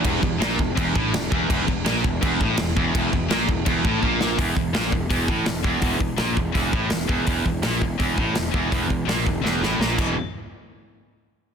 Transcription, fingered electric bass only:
X:1
M:4/4
L:1/8
Q:1/4=166
K:Em
V:1 name="Fingered electric bass" clef=bass
E,,, E,,, ^A,,, E,,, E,,, =A,,, E,,, E,,, | E,,, E,,, ^A,,, E,,, E,,, =A,,, E,,, E,,, | E,,, E,,, ^A,,, E,,, E,,, =A,,, ^A,,,2 | E,,, E,,, ^A,,, E,,, E,,, =A,,, E,,, E,,, |
E,,, E,,, ^A,,, E,,, E,,, =A,,, E,,, E,,, | E,,, E,,, ^A,,, E,,, E,,, =A,,, E,,, E,,, | E,,, E,,, ^A,,, E,,, E,,, =A,,, ^A,,, E,,, | z8 |]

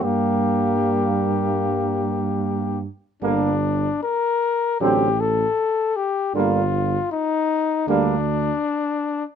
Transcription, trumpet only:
X:1
M:4/4
L:1/8
Q:1/4=78
K:Gm
V:1 name="Trumpet"
G6- G z | D2 B2 G A2 G | F2 E2 D4 |]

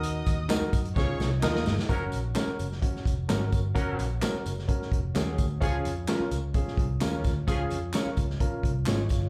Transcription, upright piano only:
X:1
M:4/4
L:1/8
Q:1/4=129
K:Gblyd
V:1 name="Upright piano"
[EGB] z [EGB] z [DFA] z [EFB] z | [DGB] z [DGB] z [DGd] z [DGB] z | [DGB] z [DGB] z [DGB] z [DGA] z | [DFA] z [DFB] z [DFA] z [DFB] z |
[DFA] z [DFB] z [DFB] z e [Fd] |]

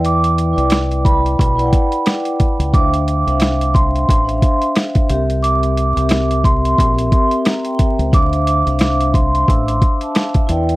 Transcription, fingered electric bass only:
X:1
M:4/4
L:1/16
Q:"Swing 16ths" 1/4=89
K:Dm
V:1 name="Fingered electric bass" clef=bass
E,,3 C,,4- C,, =B,,,2 z4 z ^C,, | D,,3 C,,4- C,, A,,,2 z4 C,,2- | C,,3 C,,4- C,, B,,,2 z4 z ^C,, | D,,3 C,,4- C,, A,,,2 z4 E,,2 |]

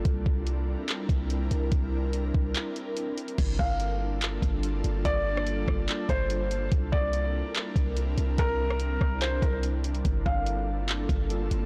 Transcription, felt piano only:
X:1
M:4/4
L:1/8
Q:1/4=144
K:Gdor
V:1 name="Felt piano"
z8 | z8 | z f3 z4 | d4- d c3 |
z d3 z4 | B4 c B z2 | z f3 z4 |]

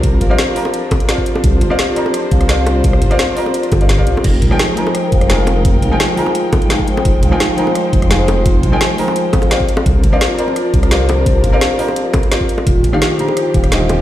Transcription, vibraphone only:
X:1
M:4/4
L:1/16
Q:1/4=171
K:Fdor
V:1 name="Vibraphone"
z2 f2 z8 F z3 | F2 z2 G2 F2 z2 f2 z4 | z4 F z3 F2 z2 G2 F2 | F2 z2 A2 c2 z2 f2 z4 |
z4 F2 z2 F2 z4 c2 | z2 f2 z8 F2 z2 | F2 z2 A2 c2 z8 | z4 F2 z2 F2 z2 G2 c2 |
z2 f2 z8 F2 z2 | F2 z2 G2 c2 z8 |]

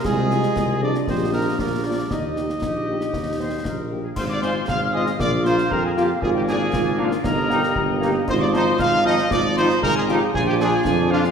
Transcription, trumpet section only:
X:1
M:2/4
L:1/16
Q:1/4=117
K:Eb
V:1 name="Trumpet section"
A6 d2 | c2 B2 B2 d2 | e8- | e6 z2 |
c d c2 f2 e2 | d2 c2 B A G2 | A G A4 F2 | B6 z2 |
c d c2 f2 e2 | d2 c2 B A G2 | A G A4 F2 |]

